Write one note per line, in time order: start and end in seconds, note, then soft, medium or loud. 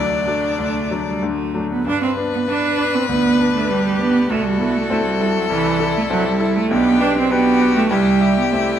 0.00 0.58 D2 medium
0.00 0.58 D3 medium
0.00 0.27 F#3 soft
0.00 0.56 F#3 medium
0.00 0.28 A3 soft
0.00 0.28 D4 medium
0.00 1.23 D4 medium
0.00 1.21 D5 medium
0.27 0.56 F#3 soft
0.27 0.56 A3 soft
0.27 0.57 D4 soft
0.58 0.90 D2 medium
0.58 0.90 D3 medium
0.58 1.06 A3 medium
0.91 1.20 F#3 soft
0.91 1.20 A3 soft
0.91 1.20 D4 soft
1.08 1.25 G3 medium
1.22 1.53 D2 medium
1.22 1.54 D3 medium
1.22 1.71 A3 medium
1.54 1.83 F#3 soft
1.54 1.83 A3 soft
1.54 1.83 D4 soft
1.71 1.86 B3 medium
1.86 2.17 G2 medium
1.86 2.01 D4 medium
1.86 4.31 B4 medium
2.02 2.10 C4 medium
2.17 2.45 B3 soft
2.17 2.45 D4 medium
2.34 2.40 B3 medium
2.48 2.76 B3 medium
2.48 2.96 D4 medium
2.48 2.76 D4 medium
2.78 3.06 B3 soft
2.78 3.06 D4 soft
2.95 3.08 C4 medium
3.09 3.38 D2 medium
3.09 3.54 B3 loud
3.09 3.71 D4 medium
3.40 3.67 B3 soft
3.40 3.67 D4 medium
3.55 3.70 A3 medium
3.69 3.99 G3 medium
3.69 3.97 B3 soft
3.69 3.97 D4 medium
3.69 4.31 G4 medium
4.00 4.28 B3 medium
4.00 4.27 B3 soft
4.00 4.27 D4 medium
4.29 4.59 C2 medium
4.29 4.46 A3 loud
4.29 5.50 F#4 medium
4.29 6.70 A4 medium
4.45 4.61 G3 medium
4.59 4.77 B3 medium
4.59 4.87 E4 medium
4.59 4.88 A4 medium
4.76 4.89 A3 medium
4.89 5.04 A3 medium
4.89 5.17 C4 medium
4.89 5.18 E4 medium
4.89 5.18 A4 medium
5.05 5.38 G3 medium
5.20 5.47 E4 medium
5.20 5.48 A4 medium
5.36 5.49 F#3 medium
5.49 5.79 C2 medium
5.49 5.94 E3 medium
5.49 6.68 E4 medium
5.80 6.07 E4 medium
5.80 6.07 A4 medium
5.97 6.02 A3 medium
6.10 6.27 F#3 loud
6.10 6.37 C4 medium
6.10 6.37 E4 medium
6.10 6.38 A4 medium
6.26 6.58 G3 medium
6.40 6.67 E4 medium
6.40 6.68 A4 medium
6.56 6.72 A3 loud
6.70 7.00 B1 medium
6.70 7.02 B3 loud
6.70 7.30 D4 medium
6.70 7.27 G4 medium
7.00 7.16 D4 loud
7.00 7.28 G4 medium
7.00 7.28 B4 medium
7.17 7.32 C4 loud
7.30 7.76 B3 loud
7.30 7.58 D4 medium
7.30 7.93 F#4 medium
7.30 7.89 G4 medium
7.30 7.58 G4 medium
7.30 7.58 B4 medium
7.60 7.88 G4 medium
7.60 7.88 B4 medium
7.76 7.92 A3 medium
7.90 8.20 C2 medium
7.90 8.39 G3 loud
7.90 8.51 E4 medium
7.90 8.79 G4 medium
8.21 8.49 G4 medium
8.21 8.49 E5 medium
8.38 8.53 B3 medium
8.52 8.79 A3 medium
8.52 8.79 C4 soft
8.52 8.79 E4 medium
8.52 8.79 G4 medium
8.52 8.79 E5 medium